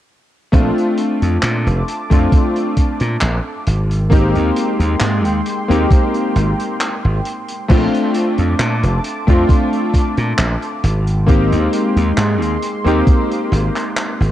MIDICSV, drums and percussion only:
0, 0, Header, 1, 2, 480
1, 0, Start_track
1, 0, Key_signature, -2, "major"
1, 0, Tempo, 895522
1, 286, Time_signature, 4, 2, 24, 8
1, 7673, End_track
2, 0, Start_track
2, 0, Title_t, "Drums"
2, 285, Note_on_c, 9, 36, 107
2, 286, Note_on_c, 9, 42, 81
2, 338, Note_off_c, 9, 36, 0
2, 339, Note_off_c, 9, 42, 0
2, 417, Note_on_c, 9, 42, 45
2, 471, Note_off_c, 9, 42, 0
2, 522, Note_on_c, 9, 42, 79
2, 575, Note_off_c, 9, 42, 0
2, 654, Note_on_c, 9, 42, 62
2, 707, Note_off_c, 9, 42, 0
2, 764, Note_on_c, 9, 39, 102
2, 766, Note_on_c, 9, 42, 74
2, 817, Note_off_c, 9, 39, 0
2, 820, Note_off_c, 9, 42, 0
2, 894, Note_on_c, 9, 42, 50
2, 948, Note_off_c, 9, 42, 0
2, 1007, Note_on_c, 9, 42, 85
2, 1061, Note_off_c, 9, 42, 0
2, 1131, Note_on_c, 9, 42, 65
2, 1132, Note_on_c, 9, 36, 100
2, 1185, Note_off_c, 9, 36, 0
2, 1185, Note_off_c, 9, 42, 0
2, 1244, Note_on_c, 9, 36, 112
2, 1244, Note_on_c, 9, 42, 82
2, 1297, Note_off_c, 9, 42, 0
2, 1298, Note_off_c, 9, 36, 0
2, 1370, Note_on_c, 9, 42, 54
2, 1424, Note_off_c, 9, 42, 0
2, 1483, Note_on_c, 9, 42, 86
2, 1485, Note_on_c, 9, 36, 59
2, 1536, Note_off_c, 9, 42, 0
2, 1538, Note_off_c, 9, 36, 0
2, 1607, Note_on_c, 9, 42, 61
2, 1660, Note_off_c, 9, 42, 0
2, 1720, Note_on_c, 9, 39, 115
2, 1723, Note_on_c, 9, 42, 80
2, 1773, Note_off_c, 9, 39, 0
2, 1776, Note_off_c, 9, 42, 0
2, 1964, Note_on_c, 9, 42, 88
2, 2018, Note_off_c, 9, 42, 0
2, 2094, Note_on_c, 9, 42, 62
2, 2147, Note_off_c, 9, 42, 0
2, 2205, Note_on_c, 9, 36, 116
2, 2207, Note_on_c, 9, 42, 88
2, 2259, Note_off_c, 9, 36, 0
2, 2260, Note_off_c, 9, 42, 0
2, 2332, Note_on_c, 9, 42, 46
2, 2386, Note_off_c, 9, 42, 0
2, 2445, Note_on_c, 9, 42, 91
2, 2499, Note_off_c, 9, 42, 0
2, 2573, Note_on_c, 9, 42, 60
2, 2626, Note_off_c, 9, 42, 0
2, 2681, Note_on_c, 9, 39, 109
2, 2686, Note_on_c, 9, 42, 89
2, 2735, Note_off_c, 9, 39, 0
2, 2740, Note_off_c, 9, 42, 0
2, 2812, Note_on_c, 9, 42, 50
2, 2866, Note_off_c, 9, 42, 0
2, 2925, Note_on_c, 9, 42, 79
2, 2978, Note_off_c, 9, 42, 0
2, 3058, Note_on_c, 9, 42, 70
2, 3112, Note_off_c, 9, 42, 0
2, 3166, Note_on_c, 9, 36, 116
2, 3168, Note_on_c, 9, 42, 85
2, 3220, Note_off_c, 9, 36, 0
2, 3222, Note_off_c, 9, 42, 0
2, 3291, Note_on_c, 9, 42, 54
2, 3345, Note_off_c, 9, 42, 0
2, 3407, Note_on_c, 9, 42, 85
2, 3461, Note_off_c, 9, 42, 0
2, 3534, Note_on_c, 9, 42, 68
2, 3588, Note_off_c, 9, 42, 0
2, 3645, Note_on_c, 9, 42, 93
2, 3648, Note_on_c, 9, 39, 113
2, 3699, Note_off_c, 9, 42, 0
2, 3702, Note_off_c, 9, 39, 0
2, 3886, Note_on_c, 9, 42, 88
2, 3940, Note_off_c, 9, 42, 0
2, 4010, Note_on_c, 9, 42, 69
2, 4064, Note_off_c, 9, 42, 0
2, 4125, Note_on_c, 9, 49, 86
2, 4127, Note_on_c, 9, 36, 110
2, 4131, Note_on_c, 9, 42, 73
2, 4178, Note_off_c, 9, 49, 0
2, 4181, Note_off_c, 9, 36, 0
2, 4184, Note_off_c, 9, 42, 0
2, 4257, Note_on_c, 9, 42, 48
2, 4311, Note_off_c, 9, 42, 0
2, 4364, Note_on_c, 9, 42, 99
2, 4418, Note_off_c, 9, 42, 0
2, 4490, Note_on_c, 9, 42, 55
2, 4544, Note_off_c, 9, 42, 0
2, 4604, Note_on_c, 9, 42, 70
2, 4608, Note_on_c, 9, 39, 106
2, 4658, Note_off_c, 9, 42, 0
2, 4661, Note_off_c, 9, 39, 0
2, 4734, Note_on_c, 9, 42, 56
2, 4788, Note_off_c, 9, 42, 0
2, 4845, Note_on_c, 9, 42, 97
2, 4899, Note_off_c, 9, 42, 0
2, 4974, Note_on_c, 9, 36, 102
2, 4975, Note_on_c, 9, 42, 48
2, 5028, Note_off_c, 9, 36, 0
2, 5029, Note_off_c, 9, 42, 0
2, 5087, Note_on_c, 9, 36, 113
2, 5089, Note_on_c, 9, 42, 78
2, 5141, Note_off_c, 9, 36, 0
2, 5142, Note_off_c, 9, 42, 0
2, 5214, Note_on_c, 9, 42, 47
2, 5267, Note_off_c, 9, 42, 0
2, 5326, Note_on_c, 9, 36, 60
2, 5327, Note_on_c, 9, 42, 93
2, 5380, Note_off_c, 9, 36, 0
2, 5381, Note_off_c, 9, 42, 0
2, 5452, Note_on_c, 9, 42, 49
2, 5505, Note_off_c, 9, 42, 0
2, 5566, Note_on_c, 9, 39, 122
2, 5567, Note_on_c, 9, 42, 76
2, 5619, Note_off_c, 9, 39, 0
2, 5621, Note_off_c, 9, 42, 0
2, 5692, Note_on_c, 9, 42, 54
2, 5746, Note_off_c, 9, 42, 0
2, 5807, Note_on_c, 9, 42, 99
2, 5861, Note_off_c, 9, 42, 0
2, 5933, Note_on_c, 9, 42, 56
2, 5987, Note_off_c, 9, 42, 0
2, 6047, Note_on_c, 9, 36, 116
2, 6047, Note_on_c, 9, 42, 70
2, 6100, Note_off_c, 9, 36, 0
2, 6101, Note_off_c, 9, 42, 0
2, 6175, Note_on_c, 9, 42, 55
2, 6229, Note_off_c, 9, 42, 0
2, 6286, Note_on_c, 9, 42, 93
2, 6339, Note_off_c, 9, 42, 0
2, 6413, Note_on_c, 9, 42, 58
2, 6466, Note_off_c, 9, 42, 0
2, 6526, Note_on_c, 9, 39, 101
2, 6529, Note_on_c, 9, 42, 63
2, 6579, Note_off_c, 9, 39, 0
2, 6582, Note_off_c, 9, 42, 0
2, 6656, Note_on_c, 9, 42, 58
2, 6710, Note_off_c, 9, 42, 0
2, 6766, Note_on_c, 9, 42, 88
2, 6819, Note_off_c, 9, 42, 0
2, 6895, Note_on_c, 9, 42, 56
2, 6949, Note_off_c, 9, 42, 0
2, 7006, Note_on_c, 9, 36, 120
2, 7007, Note_on_c, 9, 42, 69
2, 7059, Note_off_c, 9, 36, 0
2, 7060, Note_off_c, 9, 42, 0
2, 7136, Note_on_c, 9, 42, 48
2, 7189, Note_off_c, 9, 42, 0
2, 7251, Note_on_c, 9, 42, 91
2, 7304, Note_off_c, 9, 42, 0
2, 7375, Note_on_c, 9, 39, 38
2, 7377, Note_on_c, 9, 42, 59
2, 7429, Note_off_c, 9, 39, 0
2, 7431, Note_off_c, 9, 42, 0
2, 7486, Note_on_c, 9, 42, 79
2, 7488, Note_on_c, 9, 39, 120
2, 7540, Note_off_c, 9, 42, 0
2, 7541, Note_off_c, 9, 39, 0
2, 7620, Note_on_c, 9, 42, 55
2, 7673, Note_off_c, 9, 42, 0
2, 7673, End_track
0, 0, End_of_file